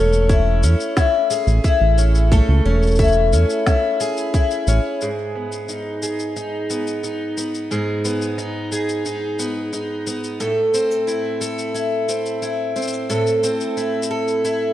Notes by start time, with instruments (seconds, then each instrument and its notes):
Already playing: analog synth bass E1, twelve-string acoustic guitar A3 C#4 A4
0.13 shaker
0.29 twelve-string acoustic guitar E4, kick, shaker
0.62 analog synth bass E2, twelve-string acoustic guitar C#4, shaker
0.80 shaker
0.97 twelve-string acoustic guitar E4, kick, snare, shaker
1.31 twelve-string acoustic guitar G#4, shaker
1.47 analog synth bass A1, shaker
1.64 twelve-string acoustic guitar E4, kick, shaker
1.81 analog synth bass A1
1.98 twelve-string acoustic guitar C#4, shaker
2.15 shaker
2.32 twelve-string acoustic guitar A3, kick, shaker
2.49 analog synth bass C#2
2.65 analog synth bass E1, twelve-string acoustic guitar C#4
2.83 shaker
2.87 shaker
2.91 shaker
2.95 twelve-string acoustic guitar E4, kick, shaker
3.00 shaker
3.04 shaker
3.08 shaker
3.12 shaker
3.32 analog synth bass E2, twelve-string acoustic guitar C#4, shaker
3.50 shaker
3.67 twelve-string acoustic guitar E4, kick, snare, shaker
4.01 twelve-string acoustic guitar G#4, shaker
4.17 shaker
4.34 twelve-string acoustic guitar E4, kick, shaker
4.51 shaker
4.67 analog synth bass A1, twelve-string acoustic guitar C#4, shaker
5.01 twelve-string acoustic guitar G#2 G#4, shaker
5.35 twelve-string acoustic guitar B3
5.52 shaker
5.69 twelve-string acoustic guitar D#4, shaker
6.03 twelve-string acoustic guitar G#4, shaker
6.20 shaker
6.36 twelve-string acoustic guitar D#4, shaker
6.70 twelve-string acoustic guitar B3, shaker
6.87 shaker
7.04 twelve-string acoustic guitar D#4, shaker
7.37 twelve-string acoustic guitar B3, shaker
7.55 shaker
7.71 twelve-string acoustic guitar G#2 G#4, shaker
8.05 twelve-string acoustic guitar B3, shaker
8.22 shaker
8.38 twelve-string acoustic guitar D#4, shaker
8.72 twelve-string acoustic guitar G#4, shaker
8.89 shaker
9.06 twelve-string acoustic guitar D#4, shaker
9.39 twelve-string acoustic guitar B3, shaker
9.73 twelve-string acoustic guitar D#4, shaker
10.07 twelve-string acoustic guitar B3, shaker
10.24 shaker
10.40 twelve-string acoustic guitar A2 A4, shaker
10.74 twelve-string acoustic guitar C4, shaker
10.91 shaker
11.07 twelve-string acoustic guitar E4, shaker
11.41 twelve-string acoustic guitar A4, shaker
11.59 shaker
11.74 twelve-string acoustic guitar E4, shaker
12.08 twelve-string acoustic guitar C4, shaker
12.26 shaker
12.42 twelve-string acoustic guitar E4, shaker
12.76 twelve-string acoustic guitar C4, shaker
12.82 shaker
12.88 shaker
12.93 shaker
13.10 twelve-string acoustic guitar A2 A4, shaker
13.27 shaker
13.43 twelve-string acoustic guitar C4, shaker
13.61 shaker
13.77 twelve-string acoustic guitar E4, shaker
14.03 shaker
14.11 twelve-string acoustic guitar A4
14.28 shaker
14.45 twelve-string acoustic guitar E4, shaker